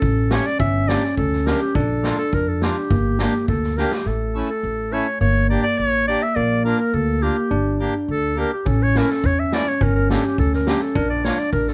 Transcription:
0.00 0.37 A1 medium
0.00 0.56 C#4 medium
0.00 0.34 A4 medium
0.00 kick medium
0.30 0.45 A3 medium
0.30 0.45 C#4 medium
0.30 0.46 G4 medium
0.30 0.48 C#5 medium
0.30 snare medium
0.46 0.59 D5 loud
0.59 0.94 G1 loud
0.59 1.78 C#4 medium
0.59 0.89 E5 medium
0.59 kick medium
0.88 1.03 A#3 medium
0.88 1.03 D4 medium
0.88 1.03 G4 medium
0.88 1.17 D5 medium
0.88 snare medium
1.03 snare soft
1.17 1.52 D2 medium
1.17 1.48 A4 medium
1.17 kick medium
1.32 snare soft
1.46 1.61 A#3 medium
1.46 1.61 D4 medium
1.46 1.61 G4 medium
1.46 1.61 A#4 medium
1.46 snare medium
1.62 1.77 G4 medium
1.75 2.10 A#1 medium
1.75 2.94 D4 loud
1.75 2.18 A4 medium
1.75 kick loud
2.03 2.18 A#3 medium
2.03 2.18 D4 medium
2.03 2.18 F4 medium
2.03 snare medium
2.18 2.35 A4 loud
2.32 2.67 F2 medium
2.32 2.50 A#4 medium
2.32 kick medium
2.48 2.65 A4 medium
2.62 2.76 A#3 medium
2.62 2.77 D4 medium
2.62 2.77 F4 medium
2.62 3.48 G4 medium
2.62 snare medium
2.91 3.25 G1 loud
2.91 3.74 A#3 medium
2.91 kick medium
3.19 3.34 A#3 medium
3.19 3.34 D4 medium
3.19 3.34 G4 medium
3.19 snare medium
3.48 3.83 D2 medium
3.48 3.78 A4 medium
3.48 kick medium
3.63 snare soft
3.77 3.92 A#3 medium
3.77 3.92 D4 medium
3.77 3.92 G4 medium
3.77 3.94 A#4 medium
3.77 snare soft
3.92 4.10 G4 medium
3.92 snare medium
4.06 4.40 A1 medium
4.06 5.25 A3 medium
4.06 4.49 A4 medium
4.34 4.49 A3 medium
4.34 4.50 C#4 medium
4.34 4.50 E4 medium
4.50 4.94 A4 medium
4.63 4.98 A1 medium
4.92 5.07 A3 medium
4.92 5.07 C#4 medium
4.92 5.07 E4 medium
4.92 5.20 C#5 medium
5.21 5.55 G1 loud
5.21 6.35 A#3 medium
5.21 5.48 C#5 medium
5.50 5.64 A#3 medium
5.50 5.65 D4 medium
5.50 5.65 G4 medium
5.50 5.62 D5 medium
5.63 5.80 D5 loud
5.78 6.13 A1 medium
5.78 6.07 C#5 loud
6.08 6.22 A#3 medium
6.08 6.22 D4 medium
6.08 6.23 G4 medium
6.08 6.24 D5 loud
6.23 6.37 E5 medium
6.35 6.71 A#1 medium
6.35 7.55 A#3 medium
6.35 6.64 D5 medium
6.65 6.79 A#3 medium
6.65 6.79 D4 medium
6.65 6.79 F4 medium
6.65 6.78 A#4 medium
6.79 6.95 A#4 medium
6.93 7.28 D2 loud
6.93 7.24 A4 loud
7.22 7.36 A#3 medium
7.22 7.37 D4 medium
7.22 7.37 F4 medium
7.22 7.81 G4 medium
7.51 7.85 G1 loud
7.51 8.33 D4 medium
7.80 7.94 A#3 medium
7.80 7.94 D4 medium
7.80 7.94 G4 medium
8.08 8.43 D2 medium
8.08 8.36 A4 loud
8.36 8.51 A#3 medium
8.36 8.51 D4 medium
8.36 8.52 G4 medium
8.36 8.52 A#4 medium
8.52 8.69 G4 medium
8.66 9.00 A1 loud
8.66 9.80 C#4 medium
8.66 8.84 A4 medium
8.66 kick medium
8.83 8.99 C#5 medium
8.95 9.09 A3 medium
8.95 9.10 C#4 medium
8.95 9.10 E4 medium
8.95 9.12 A#4 medium
8.95 snare medium
9.10 9.27 A4 medium
9.10 snare soft
9.24 9.58 E2 medium
9.24 9.41 C#5 medium
9.24 kick medium
9.39 9.55 E5 medium
9.52 9.66 A3 medium
9.52 9.66 C#4 medium
9.52 9.67 E4 medium
9.52 9.70 D5 loud
9.52 snare medium
9.68 9.84 C#5 medium
9.81 10.15 G1 loud
9.81 10.99 C#4 loud
9.81 9.95 A#4 medium
9.81 kick medium
9.95 10.08 A#4 medium
10.10 10.24 A#3 medium
10.10 10.24 D4 medium
10.10 10.24 G4 medium
10.10 10.27 A4 medium
10.10 snare medium
10.26 10.38 G4 medium
10.38 10.72 D2 medium
10.38 10.52 A4 loud
10.38 kick medium
10.53 10.67 A#4 medium
10.53 snare soft
10.67 10.81 A#3 medium
10.67 10.81 D4 medium
10.67 10.81 G4 medium
10.67 10.83 G4 medium
10.67 snare medium
10.81 10.98 A4 medium
10.95 11.30 A#1 loud
10.95 11.74 D4 loud
10.95 11.09 A#4 medium
10.95 kick medium
11.10 11.26 D5 medium
11.24 11.38 A#3 medium
11.24 11.38 D4 medium
11.24 11.39 F4 medium
11.24 11.41 C#5 medium
11.24 snare medium
11.39 11.52 D5 medium
11.53 11.74 A1 loud
11.53 11.70 A#4 medium
11.53 kick medium
11.67 11.74 A4 medium
11.67 snare soft

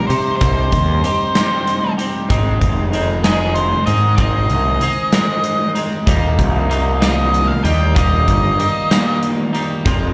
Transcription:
0.00 0.39 C3 medium
0.00 0.40 G3 medium
0.00 0.11 C4 medium
0.07 0.38 C3 medium
0.07 0.41 D#4 medium
0.07 0.41 G4 medium
0.07 0.35 C5 medium
0.07 closed hi-hat medium
0.11 0.41 C4 soft
0.37 1.35 C3 medium
0.37 1.92 C5 medium
0.41 0.69 C2 medium
0.41 1.03 G3 medium
0.41 1.04 C4 medium
0.41 1.05 D#4 medium
0.41 1.05 G4 medium
0.41 kick medium
0.41 closed hi-hat medium
0.72 1.00 D#2 medium
0.72 kick medium
0.72 closed hi-hat medium
1.04 1.36 G3 medium
1.04 1.36 C4 medium
1.04 1.35 D#4 medium
1.04 1.34 G4 medium
1.04 closed hi-hat soft
1.35 2.28 C3 medium
1.35 2.28 G3 medium
1.35 2.00 C4 medium
1.35 1.99 D#4 medium
1.35 1.97 G4 medium
1.35 snare medium
1.35 closed hi-hat medium
1.67 closed hi-hat medium
1.98 2.30 C4 medium
1.98 2.31 D#4 medium
1.98 2.28 G4 medium
1.98 closed hi-hat medium
2.29 2.58 G#1 medium
2.29 3.26 G#2 medium
2.29 2.91 D#3 medium
2.29 2.93 G#3 medium
2.29 2.94 C4 medium
2.29 2.94 D#4 medium
2.29 kick medium
2.29 closed hi-hat medium
2.61 3.73 F1 medium
2.61 kick medium
2.61 closed hi-hat soft
2.92 3.25 D#3 medium
2.92 3.24 G#3 medium
2.92 3.24 C4 medium
2.92 3.24 D#4 medium
2.92 closed hi-hat soft
3.24 4.16 G#2 medium
3.24 4.17 D#3 medium
3.24 3.87 G#3 medium
3.24 3.86 C4 medium
3.24 3.86 D#4 medium
3.24 3.53 G#4 medium
3.24 snare medium
3.24 closed hi-hat medium
3.54 3.86 C5 medium
3.54 closed hi-hat medium
3.86 4.15 G#2 medium
3.86 4.18 G#3 soft
3.86 4.18 C4 medium
3.86 4.20 D#4 medium
3.86 4.15 D#5 medium
3.86 closed hi-hat medium
4.16 4.46 G#1 medium
4.16 5.12 G#2 medium
4.16 4.80 D#3 medium
4.16 4.81 G#3 medium
4.16 4.81 C4 medium
4.16 4.83 D#4 medium
4.16 5.71 D#5 medium
4.16 kick loud
4.16 closed hi-hat medium
4.49 4.77 C2 medium
4.49 closed hi-hat soft
4.81 5.13 D#3 medium
4.81 5.12 G#3 medium
4.81 5.12 C4 medium
4.81 5.12 D#4 medium
4.81 closed hi-hat soft
5.12 6.06 G#2 medium
5.12 6.06 D#3 medium
5.12 5.76 G#3 medium
5.12 5.75 C4 medium
5.12 5.75 D#4 medium
5.12 snare medium
5.12 closed hi-hat medium
5.44 closed hi-hat medium
5.75 6.06 G#3 soft
5.75 6.06 C4 medium
5.75 6.08 D#4 medium
5.75 closed hi-hat medium
6.06 6.35 D#1 medium
6.06 7.03 D#2 medium
6.06 7.01 A#2 medium
6.06 6.69 D#3 medium
6.06 6.70 G3 medium
6.06 6.70 A#3 medium
6.06 6.72 D#4 medium
6.06 kick loud
6.06 closed hi-hat medium
6.39 7.51 C2 medium
6.39 kick medium
6.39 closed hi-hat medium
6.69 7.01 D#3 medium
6.69 7.01 G3 medium
6.69 7.00 A#3 medium
6.69 6.99 D#4 medium
6.69 closed hi-hat medium
7.01 7.95 D#2 medium
7.01 7.95 A#2 medium
7.01 7.66 D#3 medium
7.01 7.64 G3 medium
7.01 7.64 A#3 medium
7.01 7.63 D#4 medium
7.01 7.51 D#5 medium
7.01 snare medium
7.01 closed hi-hat medium
7.34 closed hi-hat medium
7.47 7.63 F5 medium
7.63 7.93 D#2 medium
7.63 7.96 D#3 soft
7.63 7.96 G3 medium
7.63 7.96 A#3 medium
7.63 7.97 D#4 medium
7.63 7.95 G5 medium
7.63 closed hi-hat medium
7.95 8.24 D#1 medium
7.95 8.91 D#2 medium
7.95 8.91 A#2 medium
7.95 8.58 D#3 medium
7.95 8.58 G3 medium
7.95 8.59 A#3 medium
7.95 8.60 D#4 medium
7.95 9.18 D#5 medium
7.95 kick medium
7.95 closed hi-hat medium
8.28 8.56 G1 medium
8.28 kick medium
8.28 closed hi-hat soft
8.59 8.90 D#3 medium
8.59 8.90 G3 medium
8.59 8.90 A#3 medium
8.59 8.89 D#4 medium
8.59 closed hi-hat soft
8.90 9.84 D#2 medium
8.90 9.84 A#2 medium
8.90 9.54 D#3 medium
8.90 9.54 G3 medium
8.90 9.53 A#3 medium
8.90 9.52 D#4 medium
8.90 snare medium
8.90 closed hi-hat medium
9.23 closed hi-hat soft
9.53 9.85 D#3 soft
9.53 9.84 G3 medium
9.53 9.84 A#3 medium
9.53 9.83 D#4 medium
9.53 closed hi-hat soft
9.84 10.13 F1 medium
9.84 10.13 F2 medium
9.84 10.13 C3 medium
9.84 10.13 F3 medium
9.84 10.13 G#3 medium
9.84 10.13 C4 medium
9.84 10.13 F4 medium
9.84 kick loud
9.84 closed hi-hat medium

